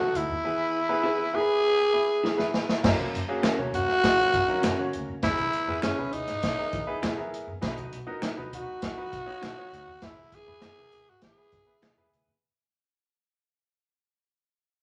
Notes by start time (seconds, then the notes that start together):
Already playing: F#4
0.00 B3 D#4 F#4 A4, muted conga
0.14 D2 E4, closed hi-hat
0.29 D#2, low conga
0.44 E3 B3 E4 G#4 B4
0.89 B3 E4 G#4 B4
1.03 E4 G#4 B4
1.33 B3 E4 G#4 A#4
1.40 B4
1.93 B3 E4 G#4 B4
2.23 E4 G#4 B4, snare
2.37 B3 E4 G#4 B4, snare
2.54 snare
2.69 snare
2.83 F#2 A#3 C#4 F#4 A#4, kick, snare, crash, muted conga, low conga
2.99 muted conga, high conga
3.13 F#2, closed hi-hat
3.28 A#3 C#4 F#4 G#4
3.43 C#4 F#4 A#4, finger snap, snare, closed hi-hat, muted conga
3.59 A#3 C#4 F#4 C#5, muted conga, high conga
3.72 F#2 F#4, closed hi-hat, high conga, low conga
3.89 snare
4.03 A#2 G#4, kick, snare, closed hi-hat, muted conga
4.18 A#3 C#4 F#4 A#4
4.33 F#2 G#3 E4, kick, closed hi-hat, high conga
4.47 F#3 A#3 C#4 D#4 F#4 A#4
4.62 F#2 E3 C#4 F#4 A#4, finger snap, snare, closed hi-hat, muted conga, high conga
4.78 C#3 A#3 C#4 F#4 C#5
4.93 D2, closed hi-hat
5.08 D#2, low conga
5.22 E2 E3 B3 E4 G#4 B4, kick, snare, closed hi-hat, muted conga, low conga
5.38 closed hi-hat, high conga
5.53 closed hi-hat
5.68 E2 B3 E4 G#4 B4
5.82 F#2 C#4 E4 G#4 B4, finger snap, snare, closed hi-hat, muted conga
5.98 B3 E4 G#4 B4, muted conga, high conga
6.12 D#4, closed hi-hat, high conga, low conga
6.27 G#2, snare, closed hi-hat
6.43 B1, kick, snare, closed hi-hat
6.58 B3 E4 G#4 A#4
6.73 E3, kick, closed hi-hat, high conga
6.87 B3 E4 G#4 B4
7.02 E2 E4 G#4 B4, finger snap, snare, closed hi-hat, muted conga, high conga
7.17 B3 E4 G#4 A#4, muted conga
7.34 closed hi-hat
7.47 F#2, low conga
7.61 B1 B2 B3 D#4 F#4 B4, kick, snare, closed hi-hat, low conga
7.77 closed hi-hat, muted conga, high conga
7.92 B1, closed hi-hat
8.07 B3 D#4 F#4 A#4
8.22 D#4 F#4 B4, finger snap, snare, closed hi-hat, muted conga
8.37 B3 D#4 F#4 B4, high conga
8.53 B1 F#4, closed hi-hat, high conga, low conga
8.82 D#2, kick, snare, closed hi-hat, muted conga
8.97 B3 D#4 F#4 B4, muted conga
9.12 B1, kick, closed hi-hat, high conga
9.26 B3 D#4 F#4 C#5
9.42 B1 D#4 F#4 B4, finger snap, snare, closed hi-hat, high conga
9.57 B3 D#4 F#4 C#5, muted conga
9.72 D2, closed hi-hat
9.87 D#2, low conga
10.02 E2 E3 B3 E4 G#4 B4, kick, snare, closed hi-hat, muted conga, low conga
10.19 high conga
10.32 G#4, kick, closed hi-hat
10.47 E2 B3 E4 G#4 B4
10.61 F#2 E4 G#4 B4, finger snap, snare, closed hi-hat, muted conga
10.77 B3 E4 G#4 A#4, high conga
10.92 closed hi-hat, high conga, low conga
11.07 G#2 F#4
11.21 E3 G#4, kick, snare, closed hi-hat
11.37 B3 E4 G#4 B4, muted conga
11.52 F#2, kick, closed hi-hat, high conga
11.67 B3 E4 G#4 B4
11.82 E4 G#4 B4, finger snap, snare, closed hi-hat, muted conga, high conga
11.96 E2 B3 E4 G#4 B4
12.10 D2, closed hi-hat, high conga
12.26 D#2, low conga